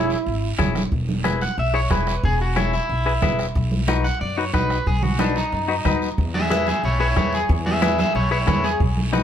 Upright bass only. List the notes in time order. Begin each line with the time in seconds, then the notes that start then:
Already playing: E1
0.26 G#1
0.59 E1
0.92 E1
1.58 B1
1.90 E1
2.23 E1
2.89 B1
3.22 E1
3.55 B1
4.21 F#2
4.54 B1
4.87 B1
5.52 F#2
5.85 D#2
6.18 E2
6.84 B1
7.17 E2
7.49 E2
8.15 B1
8.47 E2
8.80 B1